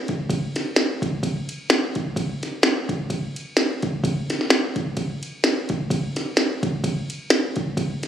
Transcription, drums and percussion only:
0.08 kick medium
0.08 ride medium
0.30 kick loud
0.30 ride medium
0.56 snare soft
0.56 ride medium
0.76 snare loud
0.76 ride medium
1.02 kick loud
1.02 ride medium
1.23 kick medium
1.23 ride medium
1.49 ride medium
1.70 snare loud
1.70 ride medium
1.95 kick medium
1.95 ride medium
2.16 kick loud
2.16 ride medium
2.43 snare soft
2.43 ride medium
2.63 snare loud
2.63 ride medium
2.89 kick loud
2.89 ride medium
3.10 kick medium
3.10 ride medium
3.36 ride medium
3.57 snare loud
3.57 ride medium
3.83 kick medium
3.83 ride medium
4.04 kick loud
4.04 ride medium
4.30 snare soft
4.30 ride medium
4.41 snare soft
4.50 snare loud
4.50 ride medium
4.76 kick medium
4.76 ride medium
4.97 kick medium
4.97 ride medium
5.23 ride medium
5.44 snare loud
5.44 ride medium
5.69 kick medium
5.69 ride medium
5.90 kick loud
5.90 ride medium
6.16 snare soft
6.16 ride medium
6.37 snare loud
6.37 ride medium
6.63 kick loud
6.63 ride medium
6.84 kick medium
6.84 ride medium
7.10 ride medium
7.30 snare loud
7.30 ride medium
7.56 kick medium
7.56 ride medium
7.77 kick loud
7.77 ride medium
8.03 snare soft
8.03 ride medium

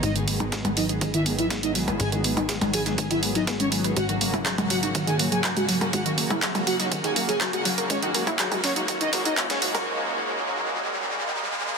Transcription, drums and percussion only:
0.03 kick loud
0.03 closed hi-hat medium
0.03 ride medium
0.16 closed hi-hat soft
0.28 open hi-hat loud
0.28 ride medium
0.40 closed hi-hat soft
0.40 percussion blips medium
0.52 kick loud
0.52 snare loud
0.52 closed hi-hat medium
0.52 ride medium
0.65 closed hi-hat soft
0.65 percussion blips medium
0.77 open hi-hat loud
0.77 ride medium
0.89 closed hi-hat soft
1.01 kick loud
1.01 closed hi-hat medium
1.01 ride medium
1.14 closed hi-hat soft
1.26 open hi-hat loud
1.26 ride medium
1.39 closed hi-hat soft
1.50 kick loud
1.50 snare loud
1.50 closed hi-hat soft
1.50 ride medium
1.63 closed hi-hat soft
1.75 open hi-hat medium
1.75 open hi-hat loud
1.88 closed hi-hat soft
1.88 percussion blips medium
2.00 kick loud
2.00 closed hi-hat medium
2.00 ride medium
2.12 closed hi-hat soft
2.24 open hi-hat loud
2.24 ride medium
2.37 closed hi-hat soft
2.37 percussion blips medium
2.49 kick loud
2.49 snare loud
2.49 closed hi-hat medium
2.49 ride medium
2.61 closed hi-hat soft
2.61 ride soft
2.61 percussion blips medium
2.73 open hi-hat loud
2.73 ride medium
2.86 snare soft
2.86 closed hi-hat soft
2.98 kick loud
2.98 closed hi-hat medium
2.98 ride medium
3.11 closed hi-hat soft
3.11 ride soft
3.23 open hi-hat loud
3.23 ride medium
3.35 closed hi-hat soft
3.35 ride soft
3.47 kick loud
3.47 snare loud
3.47 closed hi-hat soft
3.47 ride medium
3.60 closed hi-hat soft
3.72 open hi-hat loud
3.72 ride medium
3.84 closed hi-hat soft
3.96 kick loud
3.96 closed hi-hat medium
3.96 ride medium
4.09 closed hi-hat soft
4.21 open hi-hat loud
4.21 ride medium
4.34 closed hi-hat soft
4.34 percussion blips medium
4.46 kick loud
4.46 snare loud
4.46 clap loud
4.46 closed hi-hat medium
4.46 ride medium
4.58 closed hi-hat soft
4.58 percussion blips medium
4.70 open hi-hat loud
4.70 ride medium
4.83 closed hi-hat soft
4.95 kick loud
4.95 closed hi-hat medium
4.95 ride medium
5.07 closed hi-hat soft
5.19 open hi-hat loud
5.19 ride medium
5.32 closed hi-hat soft
5.44 kick loud
5.44 snare loud
5.44 clap loud
5.44 closed hi-hat soft
5.44 ride medium
5.57 closed hi-hat soft
5.69 open hi-hat medium
5.69 open hi-hat loud
5.81 closed hi-hat soft
5.81 percussion blips medium
5.93 kick loud
5.93 closed hi-hat medium
5.93 ride medium
6.06 closed hi-hat soft
6.18 open hi-hat loud
6.18 ride medium
6.30 closed hi-hat soft
6.30 percussion blips medium
6.42 kick loud
6.42 snare loud
6.42 clap loud
6.42 closed hi-hat medium
6.42 ride medium
6.55 closed hi-hat soft
6.55 ride soft
6.55 percussion blips medium
6.67 open hi-hat loud
6.67 ride medium
6.80 snare soft
6.80 closed hi-hat soft
6.92 kick loud
6.92 closed hi-hat medium
6.92 ride medium
7.04 closed hi-hat soft
7.04 ride soft
7.16 open hi-hat loud
7.16 ride medium
7.29 closed hi-hat soft
7.29 ride soft
7.41 kick loud
7.41 snare loud
7.41 clap loud
7.41 closed hi-hat soft
7.41 ride medium
7.53 closed hi-hat soft
7.65 open hi-hat loud
7.65 ride medium
7.78 closed hi-hat soft
7.90 kick loud
7.90 closed hi-hat medium
7.90 ride medium
8.03 closed hi-hat soft
8.15 open hi-hat loud
8.15 ride medium
8.27 closed hi-hat soft
8.27 percussion blips medium
8.39 kick loud
8.39 snare loud
8.39 clap loud
8.39 closed hi-hat medium
8.39 ride medium
8.52 closed hi-hat soft
8.52 percussion blips medium
8.64 snare loud
8.64 open hi-hat loud
8.64 ride medium
8.76 closed hi-hat soft
8.88 kick loud
8.88 closed hi-hat medium
8.88 ride medium
9.01 closed hi-hat soft
9.13 snare loud
9.13 open hi-hat loud
9.13 ride medium
9.25 closed hi-hat soft
9.37 kick loud
9.37 clap loud
9.37 closed hi-hat medium
9.37 open hi-hat medium
9.50 snare loud
9.50 closed hi-hat soft
9.50 ride medium
9.62 open hi-hat loud
9.75 closed hi-hat soft
9.75 open hi-hat medium
9.75 percussion blips medium

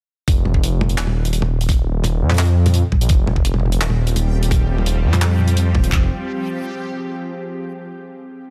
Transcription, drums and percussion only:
0.28 kick loud
0.28 closed hi-hat loud
0.45 mid tom medium
0.54 kick medium
0.64 closed hi-hat medium
0.81 mid tom medium
0.89 closed hi-hat medium
0.98 clap loud
0.98 closed hi-hat loud
1.07 mid tom medium
1.25 closed hi-hat medium
1.33 closed hi-hat medium
1.42 mid tom medium
1.61 closed hi-hat medium
1.69 kick loud
1.69 closed hi-hat medium
1.69 mid tom medium
2.04 closed hi-hat medium
2.04 mid tom medium
2.30 clap soft
2.30 closed hi-hat soft
2.30 mid tom medium
2.34 closed hi-hat soft
2.37 clap loud
2.37 closed hi-hat soft
2.39 closed hi-hat medium
2.39 closed hi-hat soft
2.43 closed hi-hat soft
2.45 closed hi-hat soft
2.66 closed hi-hat medium
2.66 mid tom medium
2.74 closed hi-hat medium
2.92 kick medium
2.92 mid tom medium
3.01 closed hi-hat medium
3.09 kick loud
3.09 closed hi-hat medium
3.27 mid tom medium
3.36 kick medium
3.45 closed hi-hat medium
3.54 mid tom soft
3.60 mid tom soft
3.66 mid tom soft
3.72 closed hi-hat medium
3.81 clap loud
3.81 closed hi-hat medium
3.90 mid tom medium
4.07 closed hi-hat medium
4.16 closed hi-hat medium
4.16 mid tom soft
4.43 closed hi-hat medium
4.51 kick loud
4.51 closed hi-hat medium
4.51 mid tom medium
4.78 mid tom soft
4.86 closed hi-hat medium
5.13 clap soft
5.13 closed hi-hat medium
5.13 mid tom medium
5.22 clap loud
5.22 closed hi-hat medium
5.39 mid tom medium
5.48 closed hi-hat medium
5.57 closed hi-hat medium
5.75 kick medium
5.75 mid tom medium
5.84 closed hi-hat soft
5.92 kick loud
5.92 clap medium
5.92 floor tom loud

